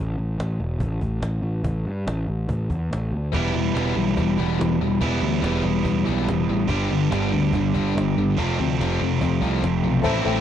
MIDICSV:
0, 0, Header, 1, 6, 480
1, 0, Start_track
1, 0, Key_signature, 0, "minor"
1, 0, Tempo, 419287
1, 1890, Time_signature, 4, 2, 24, 8
1, 11913, End_track
2, 0, Start_track
2, 0, Title_t, "Honky-tonk piano"
2, 0, Program_c, 0, 3
2, 11471, Note_on_c, 0, 69, 108
2, 11487, Note_on_c, 0, 76, 103
2, 11487, Note_on_c, 0, 81, 117
2, 11489, Note_on_c, 0, 72, 107
2, 11675, Note_off_c, 0, 69, 0
2, 11683, Note_off_c, 0, 72, 0
2, 11683, Note_off_c, 0, 76, 0
2, 11683, Note_off_c, 0, 81, 0
2, 11731, Note_on_c, 0, 69, 80
2, 11733, Note_on_c, 0, 72, 79
2, 11737, Note_on_c, 0, 76, 78
2, 11739, Note_on_c, 0, 79, 88
2, 11913, Note_off_c, 0, 69, 0
2, 11913, Note_off_c, 0, 72, 0
2, 11913, Note_off_c, 0, 76, 0
2, 11913, Note_off_c, 0, 79, 0
2, 11913, End_track
3, 0, Start_track
3, 0, Title_t, "Overdriven electric guitar"
3, 0, Program_c, 1, 29
3, 3852, Note_on_c, 1, 64, 92
3, 5738, Note_off_c, 1, 64, 0
3, 5766, Note_on_c, 1, 64, 91
3, 7653, Note_off_c, 1, 64, 0
3, 7654, Note_on_c, 1, 59, 91
3, 7657, Note_on_c, 1, 62, 101
3, 9563, Note_off_c, 1, 59, 0
3, 9564, Note_off_c, 1, 62, 0
3, 9596, Note_on_c, 1, 60, 90
3, 9597, Note_on_c, 1, 57, 95
3, 11490, Note_off_c, 1, 60, 0
3, 11491, Note_off_c, 1, 57, 0
3, 11913, End_track
4, 0, Start_track
4, 0, Title_t, "Distorted electric guitar"
4, 0, Program_c, 2, 30
4, 3805, Note_on_c, 2, 52, 78
4, 3809, Note_on_c, 2, 55, 86
4, 3815, Note_on_c, 2, 59, 81
4, 4033, Note_off_c, 2, 52, 0
4, 4035, Note_off_c, 2, 55, 0
4, 4039, Note_off_c, 2, 59, 0
4, 4055, Note_on_c, 2, 52, 60
4, 4056, Note_on_c, 2, 55, 63
4, 4269, Note_off_c, 2, 52, 0
4, 4269, Note_off_c, 2, 55, 0
4, 4286, Note_on_c, 2, 52, 76
4, 4288, Note_on_c, 2, 55, 84
4, 4294, Note_on_c, 2, 59, 79
4, 4514, Note_off_c, 2, 52, 0
4, 4515, Note_off_c, 2, 55, 0
4, 4518, Note_off_c, 2, 59, 0
4, 4531, Note_on_c, 2, 52, 68
4, 4538, Note_on_c, 2, 55, 71
4, 4747, Note_off_c, 2, 52, 0
4, 4750, Note_off_c, 2, 55, 0
4, 4779, Note_on_c, 2, 52, 62
4, 4783, Note_on_c, 2, 55, 71
4, 4991, Note_off_c, 2, 52, 0
4, 4993, Note_off_c, 2, 55, 0
4, 5018, Note_on_c, 2, 52, 88
4, 5025, Note_on_c, 2, 55, 90
4, 5032, Note_on_c, 2, 59, 86
4, 5240, Note_off_c, 2, 52, 0
4, 5244, Note_off_c, 2, 55, 0
4, 5247, Note_off_c, 2, 59, 0
4, 5258, Note_on_c, 2, 52, 64
4, 5260, Note_on_c, 2, 55, 68
4, 5471, Note_off_c, 2, 52, 0
4, 5472, Note_off_c, 2, 55, 0
4, 5511, Note_on_c, 2, 52, 65
4, 5513, Note_on_c, 2, 55, 68
4, 5718, Note_off_c, 2, 52, 0
4, 5719, Note_off_c, 2, 55, 0
4, 5733, Note_on_c, 2, 52, 82
4, 5733, Note_on_c, 2, 55, 81
4, 5743, Note_on_c, 2, 59, 87
4, 5958, Note_off_c, 2, 52, 0
4, 5958, Note_off_c, 2, 55, 0
4, 5964, Note_off_c, 2, 59, 0
4, 5978, Note_on_c, 2, 52, 67
4, 5983, Note_on_c, 2, 55, 72
4, 6185, Note_off_c, 2, 52, 0
4, 6194, Note_off_c, 2, 55, 0
4, 6199, Note_on_c, 2, 52, 85
4, 6211, Note_on_c, 2, 55, 86
4, 6215, Note_on_c, 2, 59, 91
4, 6432, Note_off_c, 2, 52, 0
4, 6438, Note_off_c, 2, 55, 0
4, 6440, Note_off_c, 2, 59, 0
4, 6454, Note_on_c, 2, 52, 64
4, 6463, Note_on_c, 2, 55, 72
4, 6670, Note_off_c, 2, 52, 0
4, 6675, Note_off_c, 2, 55, 0
4, 6692, Note_on_c, 2, 55, 65
4, 6694, Note_on_c, 2, 52, 69
4, 6909, Note_off_c, 2, 55, 0
4, 6910, Note_off_c, 2, 52, 0
4, 6933, Note_on_c, 2, 52, 78
4, 6938, Note_on_c, 2, 55, 87
4, 6944, Note_on_c, 2, 59, 86
4, 7155, Note_off_c, 2, 52, 0
4, 7162, Note_off_c, 2, 55, 0
4, 7165, Note_off_c, 2, 59, 0
4, 7169, Note_on_c, 2, 52, 68
4, 7180, Note_on_c, 2, 55, 67
4, 7388, Note_off_c, 2, 52, 0
4, 7393, Note_off_c, 2, 55, 0
4, 7431, Note_on_c, 2, 52, 65
4, 7437, Note_on_c, 2, 55, 73
4, 7639, Note_off_c, 2, 52, 0
4, 7642, Note_off_c, 2, 55, 0
4, 7662, Note_on_c, 2, 43, 83
4, 7671, Note_on_c, 2, 50, 82
4, 7674, Note_on_c, 2, 55, 95
4, 7885, Note_off_c, 2, 43, 0
4, 7889, Note_off_c, 2, 50, 0
4, 7891, Note_off_c, 2, 55, 0
4, 7899, Note_on_c, 2, 43, 67
4, 7911, Note_on_c, 2, 50, 70
4, 8114, Note_off_c, 2, 43, 0
4, 8119, Note_off_c, 2, 50, 0
4, 8136, Note_on_c, 2, 43, 83
4, 8140, Note_on_c, 2, 50, 82
4, 8149, Note_on_c, 2, 55, 89
4, 8362, Note_off_c, 2, 43, 0
4, 8364, Note_off_c, 2, 50, 0
4, 8368, Note_off_c, 2, 55, 0
4, 8378, Note_on_c, 2, 43, 69
4, 8379, Note_on_c, 2, 50, 76
4, 8593, Note_off_c, 2, 43, 0
4, 8594, Note_off_c, 2, 50, 0
4, 8637, Note_on_c, 2, 43, 61
4, 8648, Note_on_c, 2, 50, 75
4, 8843, Note_off_c, 2, 43, 0
4, 8849, Note_off_c, 2, 50, 0
4, 8863, Note_on_c, 2, 43, 86
4, 8869, Note_on_c, 2, 55, 83
4, 8873, Note_on_c, 2, 50, 87
4, 9086, Note_off_c, 2, 43, 0
4, 9089, Note_off_c, 2, 55, 0
4, 9091, Note_off_c, 2, 50, 0
4, 9108, Note_on_c, 2, 43, 70
4, 9123, Note_on_c, 2, 50, 75
4, 9319, Note_off_c, 2, 43, 0
4, 9327, Note_off_c, 2, 50, 0
4, 9364, Note_on_c, 2, 43, 59
4, 9368, Note_on_c, 2, 50, 76
4, 9567, Note_off_c, 2, 43, 0
4, 9569, Note_off_c, 2, 50, 0
4, 9597, Note_on_c, 2, 41, 83
4, 9598, Note_on_c, 2, 48, 84
4, 9604, Note_on_c, 2, 53, 86
4, 9813, Note_off_c, 2, 41, 0
4, 9814, Note_off_c, 2, 48, 0
4, 9817, Note_off_c, 2, 53, 0
4, 9841, Note_on_c, 2, 41, 63
4, 9845, Note_on_c, 2, 48, 77
4, 10045, Note_off_c, 2, 41, 0
4, 10047, Note_off_c, 2, 48, 0
4, 10081, Note_on_c, 2, 41, 75
4, 10085, Note_on_c, 2, 48, 79
4, 10094, Note_on_c, 2, 53, 77
4, 10295, Note_off_c, 2, 41, 0
4, 10297, Note_off_c, 2, 48, 0
4, 10301, Note_off_c, 2, 53, 0
4, 10327, Note_on_c, 2, 41, 67
4, 10335, Note_on_c, 2, 48, 77
4, 10528, Note_off_c, 2, 41, 0
4, 10532, Note_off_c, 2, 48, 0
4, 10546, Note_on_c, 2, 41, 66
4, 10555, Note_on_c, 2, 48, 75
4, 10758, Note_off_c, 2, 41, 0
4, 10762, Note_off_c, 2, 48, 0
4, 10777, Note_on_c, 2, 41, 87
4, 10787, Note_on_c, 2, 53, 93
4, 10788, Note_on_c, 2, 48, 83
4, 11002, Note_off_c, 2, 41, 0
4, 11007, Note_off_c, 2, 53, 0
4, 11008, Note_off_c, 2, 48, 0
4, 11026, Note_on_c, 2, 41, 61
4, 11032, Note_on_c, 2, 48, 74
4, 11237, Note_off_c, 2, 41, 0
4, 11240, Note_off_c, 2, 48, 0
4, 11261, Note_on_c, 2, 41, 63
4, 11267, Note_on_c, 2, 48, 70
4, 11474, Note_off_c, 2, 41, 0
4, 11477, Note_off_c, 2, 48, 0
4, 11499, Note_on_c, 2, 45, 85
4, 11503, Note_on_c, 2, 52, 90
4, 11513, Note_on_c, 2, 57, 102
4, 11521, Note_on_c, 2, 60, 98
4, 11529, Note_on_c, 2, 64, 85
4, 11913, Note_off_c, 2, 45, 0
4, 11913, Note_off_c, 2, 52, 0
4, 11913, Note_off_c, 2, 57, 0
4, 11913, Note_off_c, 2, 60, 0
4, 11913, Note_off_c, 2, 64, 0
4, 11913, End_track
5, 0, Start_track
5, 0, Title_t, "Picked electric bass"
5, 0, Program_c, 3, 34
5, 0, Note_on_c, 3, 33, 86
5, 184, Note_off_c, 3, 33, 0
5, 210, Note_on_c, 3, 33, 78
5, 431, Note_off_c, 3, 33, 0
5, 445, Note_on_c, 3, 33, 79
5, 669, Note_off_c, 3, 33, 0
5, 684, Note_on_c, 3, 28, 80
5, 908, Note_off_c, 3, 28, 0
5, 917, Note_on_c, 3, 33, 82
5, 1144, Note_off_c, 3, 33, 0
5, 1161, Note_on_c, 3, 33, 79
5, 1386, Note_off_c, 3, 33, 0
5, 1398, Note_on_c, 3, 33, 85
5, 1624, Note_off_c, 3, 33, 0
5, 1631, Note_on_c, 3, 33, 80
5, 1860, Note_off_c, 3, 33, 0
5, 1876, Note_on_c, 3, 33, 82
5, 2103, Note_off_c, 3, 33, 0
5, 2126, Note_on_c, 3, 43, 83
5, 2349, Note_off_c, 3, 43, 0
5, 2367, Note_on_c, 3, 33, 79
5, 2589, Note_off_c, 3, 33, 0
5, 2610, Note_on_c, 3, 33, 81
5, 2831, Note_off_c, 3, 33, 0
5, 2850, Note_on_c, 3, 33, 81
5, 3071, Note_off_c, 3, 33, 0
5, 3087, Note_on_c, 3, 40, 78
5, 3309, Note_off_c, 3, 40, 0
5, 3332, Note_on_c, 3, 33, 78
5, 3552, Note_off_c, 3, 33, 0
5, 3566, Note_on_c, 3, 38, 84
5, 3789, Note_off_c, 3, 38, 0
5, 3814, Note_on_c, 3, 28, 86
5, 4033, Note_off_c, 3, 28, 0
5, 4050, Note_on_c, 3, 28, 76
5, 4271, Note_off_c, 3, 28, 0
5, 4280, Note_on_c, 3, 28, 82
5, 4506, Note_off_c, 3, 28, 0
5, 4526, Note_on_c, 3, 35, 72
5, 4749, Note_off_c, 3, 35, 0
5, 4776, Note_on_c, 3, 28, 79
5, 4995, Note_off_c, 3, 28, 0
5, 5018, Note_on_c, 3, 28, 77
5, 5236, Note_off_c, 3, 28, 0
5, 5263, Note_on_c, 3, 28, 84
5, 5479, Note_off_c, 3, 28, 0
5, 5501, Note_on_c, 3, 28, 82
5, 5718, Note_off_c, 3, 28, 0
5, 5734, Note_on_c, 3, 28, 82
5, 5954, Note_off_c, 3, 28, 0
5, 5973, Note_on_c, 3, 38, 84
5, 6194, Note_off_c, 3, 38, 0
5, 6209, Note_on_c, 3, 28, 85
5, 6432, Note_off_c, 3, 28, 0
5, 6453, Note_on_c, 3, 28, 79
5, 6674, Note_off_c, 3, 28, 0
5, 6689, Note_on_c, 3, 28, 83
5, 6913, Note_off_c, 3, 28, 0
5, 6939, Note_on_c, 3, 35, 85
5, 7158, Note_off_c, 3, 35, 0
5, 7184, Note_on_c, 3, 28, 88
5, 7401, Note_off_c, 3, 28, 0
5, 7418, Note_on_c, 3, 33, 87
5, 7638, Note_off_c, 3, 33, 0
5, 7655, Note_on_c, 3, 31, 82
5, 7876, Note_off_c, 3, 31, 0
5, 7915, Note_on_c, 3, 31, 84
5, 8127, Note_off_c, 3, 31, 0
5, 8137, Note_on_c, 3, 31, 85
5, 8358, Note_off_c, 3, 31, 0
5, 8399, Note_on_c, 3, 38, 78
5, 8610, Note_off_c, 3, 38, 0
5, 8621, Note_on_c, 3, 31, 84
5, 8840, Note_off_c, 3, 31, 0
5, 8868, Note_on_c, 3, 31, 79
5, 9084, Note_off_c, 3, 31, 0
5, 9104, Note_on_c, 3, 31, 81
5, 9322, Note_off_c, 3, 31, 0
5, 9353, Note_on_c, 3, 31, 82
5, 9567, Note_off_c, 3, 31, 0
5, 9591, Note_on_c, 3, 29, 85
5, 9806, Note_off_c, 3, 29, 0
5, 9843, Note_on_c, 3, 38, 82
5, 10052, Note_off_c, 3, 38, 0
5, 10068, Note_on_c, 3, 29, 81
5, 10284, Note_off_c, 3, 29, 0
5, 10312, Note_on_c, 3, 29, 77
5, 10526, Note_off_c, 3, 29, 0
5, 10551, Note_on_c, 3, 29, 80
5, 10765, Note_off_c, 3, 29, 0
5, 10775, Note_on_c, 3, 36, 80
5, 10997, Note_off_c, 3, 36, 0
5, 11023, Note_on_c, 3, 29, 83
5, 11241, Note_off_c, 3, 29, 0
5, 11255, Note_on_c, 3, 35, 84
5, 11476, Note_off_c, 3, 35, 0
5, 11504, Note_on_c, 3, 33, 88
5, 11678, Note_off_c, 3, 33, 0
5, 11741, Note_on_c, 3, 33, 87
5, 11913, Note_off_c, 3, 33, 0
5, 11913, End_track
6, 0, Start_track
6, 0, Title_t, "Cajon"
6, 457, Note_on_c, 9, 38, 100
6, 571, Note_off_c, 9, 38, 0
6, 918, Note_on_c, 9, 36, 100
6, 1033, Note_off_c, 9, 36, 0
6, 1159, Note_on_c, 9, 36, 72
6, 1273, Note_off_c, 9, 36, 0
6, 1402, Note_on_c, 9, 38, 100
6, 1516, Note_off_c, 9, 38, 0
6, 1881, Note_on_c, 9, 36, 101
6, 1996, Note_off_c, 9, 36, 0
6, 2375, Note_on_c, 9, 38, 100
6, 2490, Note_off_c, 9, 38, 0
6, 2848, Note_on_c, 9, 36, 98
6, 2962, Note_off_c, 9, 36, 0
6, 3090, Note_on_c, 9, 36, 76
6, 3205, Note_off_c, 9, 36, 0
6, 3351, Note_on_c, 9, 38, 100
6, 3466, Note_off_c, 9, 38, 0
6, 3814, Note_on_c, 9, 36, 97
6, 3928, Note_off_c, 9, 36, 0
6, 4311, Note_on_c, 9, 38, 104
6, 4426, Note_off_c, 9, 38, 0
6, 4774, Note_on_c, 9, 36, 97
6, 4888, Note_off_c, 9, 36, 0
6, 5014, Note_on_c, 9, 36, 70
6, 5128, Note_off_c, 9, 36, 0
6, 5278, Note_on_c, 9, 38, 105
6, 5393, Note_off_c, 9, 38, 0
6, 5735, Note_on_c, 9, 36, 99
6, 5850, Note_off_c, 9, 36, 0
6, 6227, Note_on_c, 9, 38, 95
6, 6342, Note_off_c, 9, 38, 0
6, 6695, Note_on_c, 9, 36, 98
6, 6809, Note_off_c, 9, 36, 0
6, 6936, Note_on_c, 9, 36, 77
6, 7050, Note_off_c, 9, 36, 0
6, 7195, Note_on_c, 9, 38, 105
6, 7309, Note_off_c, 9, 38, 0
6, 7656, Note_on_c, 9, 36, 99
6, 7770, Note_off_c, 9, 36, 0
6, 8153, Note_on_c, 9, 38, 100
6, 8267, Note_off_c, 9, 38, 0
6, 8622, Note_on_c, 9, 36, 100
6, 8737, Note_off_c, 9, 36, 0
6, 8866, Note_on_c, 9, 36, 75
6, 8981, Note_off_c, 9, 36, 0
6, 9132, Note_on_c, 9, 38, 99
6, 9246, Note_off_c, 9, 38, 0
6, 9590, Note_on_c, 9, 36, 99
6, 9705, Note_off_c, 9, 36, 0
6, 10088, Note_on_c, 9, 38, 96
6, 10202, Note_off_c, 9, 38, 0
6, 10546, Note_on_c, 9, 36, 107
6, 10661, Note_off_c, 9, 36, 0
6, 10782, Note_on_c, 9, 36, 72
6, 10897, Note_off_c, 9, 36, 0
6, 11033, Note_on_c, 9, 38, 98
6, 11147, Note_off_c, 9, 38, 0
6, 11496, Note_on_c, 9, 36, 110
6, 11610, Note_off_c, 9, 36, 0
6, 11913, End_track
0, 0, End_of_file